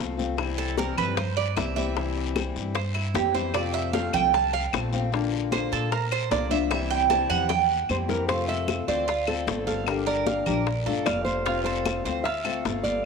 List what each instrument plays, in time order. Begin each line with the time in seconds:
0.00 upright bass C2, steel-string acoustic guitar F3 A3 C4 F4, high conga
0.17 steel-string acoustic guitar F3 A3 C4 F4, high conga, short guiro
0.37 steel-string acoustic guitar C3 E3 G3 C4 E4, high bongo, high conga, long guiro, claves
0.58 cuban tres A4, high bongo, high conga
0.77 steel-string acoustic guitar C3 E3 G3 C4 E4, cuban tres A#4, high bongo, high conga, short guiro
0.97 upright bass G2, cuban tres B4, high conga, low conga, short guiro, claves
1.17 cuban tres C5, muted steel-string acoustic guitar stroke, high bongo, high conga, low conga, long guiro
1.37 cuban tres D5, high bongo, high conga
1.56 upright bass C2, steel-string acoustic guitar E3 G3 C4 E4, cuban tres E5, high bongo, low bongo, high conga, short guiro, claves
1.76 steel-string acoustic guitar E3 G3 C4 E4, cuban tres E5, high bongo, high conga, short guiro
1.95 steel-string acoustic guitar C3 E3 G3 C4 E4, high bongo, high conga, long guiro
2.16 high bongo, high conga
2.35 steel-string acoustic guitar C3 E3 G3 C4 E4, high bongo, high conga, short guiro, claves
2.56 upright bass G2, high bongo, high conga, short guiro
2.75 cuban tres C5, muted steel-string acoustic guitar stroke, high bongo, high conga, long guiro
2.94 cuban tres E4, high bongo, high conga, claves
3.14 upright bass F2, steel-string acoustic guitar E3 G3 C4 E4, cuban tres G4, high bongo, low bongo, high conga, short guiro
3.34 steel-string acoustic guitar E3 G3 C4 E4, cuban tres C5, high conga, short guiro
3.54 steel-string acoustic guitar C3 F3 A3 C4 F4, cuban tres D5, high bongo, high conga, long guiro, claves
3.74 cuban tres E5, high bongo
3.93 steel-string acoustic guitar C3 F3 A3 C4 F4, cuban tres F5, high bongo, high conga, short guiro
4.13 upright bass C2, cuban tres G5, high conga, low conga, short guiro, claves
4.33 cuban tres A5, muted steel-string acoustic guitar stroke, high bongo, high conga, low conga, long guiro
4.53 cuban tres F5, high bongo, high conga
4.72 upright bass A#1, steel-string acoustic guitar F3 A3 C4 F4, high bongo, low bongo, high conga, short guiro, claves
4.92 steel-string acoustic guitar F3 A3 C4 F4, high bongo, high conga, short guiro
5.12 steel-string acoustic guitar D3 A#3 D4 F4, high bongo, high conga, long guiro
5.32 high bongo, high conga
5.51 steel-string acoustic guitar D3 A#3 D4 F4, cuban tres C5, high bongo, high conga, short guiro, claves
5.72 upright bass A#2, cuban tres A4, high bongo, high conga, short guiro
5.91 cuban tres A#4, muted steel-string acoustic guitar stroke, high bongo, high conga, long guiro
6.12 cuban tres C5, high bongo, high conga, claves
6.31 upright bass C2, steel-string acoustic guitar D3 A#3 D4 F4, cuban tres D5, high bongo, low bongo, high conga, short guiro
6.50 steel-string acoustic guitar A#3 D4 F4, cuban tres E5, high conga, short guiro
6.70 steel-string acoustic guitar C3 E3 G3 C4 E4, cuban tres E5, high bongo, long guiro, claves
6.90 cuban tres G5, high bongo, high conga
7.10 steel-string acoustic guitar C3 E3 G3 C4 E4, cuban tres A5, high bongo, high conga, short guiro
7.30 upright bass E2, cuban tres F#5, high conga, low conga, short guiro, claves
7.49 cuban tres G5, muted steel-string acoustic guitar stroke, high bongo, high conga, low conga, long guiro
7.71 high conga
7.89 upright bass F2, steel-string acoustic guitar E3 G3 C4 E4, nylon-string guitar C5, high conga, short guiro, claves
8.08 steel-string acoustic guitar E3 G3 C4 E4, nylon-string guitar A#4, low bongo, high conga, short guiro
8.28 steel-string acoustic guitar C3 A3 C4 F4, cuban tres F4, nylon-string guitar C5, high bongo, high conga, long guiro
8.48 cuban tres A4, nylon-string guitar E5, high bongo, high conga
8.68 high bongo, high conga, short guiro, claves
8.88 upright bass D2, steel-string acoustic guitar E3 A3 C4 F4, cuban tres C5, nylon-string guitar D5, high bongo, high conga, short guiro
9.07 cuban tres F4, muted steel-string acoustic guitar stroke, high bongo, high conga, long guiro
9.27 steel-string acoustic guitar A3 C4 F4, cuban tres A4, nylon-string guitar A4, high bongo, high conga, claves
9.47 upright bass G1, steel-string acoustic guitar D3 A3 C4 F4, high bongo, low bongo, high conga, short guiro
9.67 nylon-string guitar A4, cuban tres F5, high conga, short guiro
9.86 steel-string acoustic guitar D3 F3 A#3 D4 G4, nylon-string guitar A#4, high bongo, high conga, long guiro, claves
10.06 cuban tres A#4, nylon-string guitar D5, high bongo, high conga
10.26 cuban tres F5, high bongo, high conga, short guiro
10.46 upright bass A#1, steel-string acoustic guitar F3 A#3 D4 G4, cuban tres A#4, high conga, low conga, short guiro, claves
10.67 muted steel-string acoustic guitar stroke, high bongo, long guiro
10.86 upright bass G1, steel-string acoustic guitar A3 D4 F4, cuban tres A4, high bongo, high conga
11.05 upright bass F1, steel-string acoustic guitar F3 A3 D4 F4, nylon-string guitar D5, cuban tres F5, high bongo, low bongo, high conga, short guiro, claves
11.25 nylon-string guitar C5, high bongo, high conga, short guiro
11.46 steel-string acoustic guitar C3 A3 C4 F4, cuban tres F4, high bongo, high conga, long guiro
11.64 cuban tres A4, nylon-string guitar C5, high bongo, high conga
11.85 high bongo, high conga, short guiro, claves
12.05 upright bass D2, steel-string acoustic guitar E3 A3 C4 F4, cuban tres C5, high bongo, high conga, short guiro
12.24 cuban tres F4, nylon-string guitar E5, high bongo, high conga, long guiro
12.44 steel-string acoustic guitar A3 C4 F4, cuban tres A4, high bongo, high conga, claves
12.64 upright bass G1, steel-string acoustic guitar D3 A3 C4 F4, high bongo, low bongo, high conga, short guiro
12.83 nylon-string guitar D5, cuban tres F5, high conga, short guiro